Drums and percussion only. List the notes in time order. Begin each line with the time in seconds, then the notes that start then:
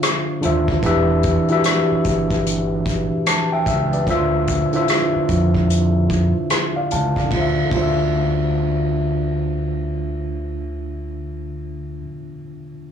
0.03 cross-stick, closed hi-hat
0.43 closed hi-hat
0.68 kick
0.83 kick, closed hi-hat
1.23 kick, closed hi-hat
1.48 closed hi-hat
1.64 cross-stick, closed hi-hat
2.04 kick, closed hi-hat
2.30 kick, closed hi-hat
2.46 closed hi-hat
2.86 kick, closed hi-hat
3.26 cross-stick, closed hi-hat
3.66 kick, closed hi-hat
3.93 closed hi-hat
4.07 kick, closed hi-hat
4.47 kick, closed hi-hat
4.73 closed hi-hat
4.88 cross-stick, closed hi-hat
5.29 kick, closed hi-hat
5.54 kick
5.70 closed hi-hat
6.10 kick, closed hi-hat
6.50 cross-stick, closed hi-hat
6.91 closed hi-hat
7.16 kick, closed hi-hat
7.31 kick, ride
7.71 kick, ride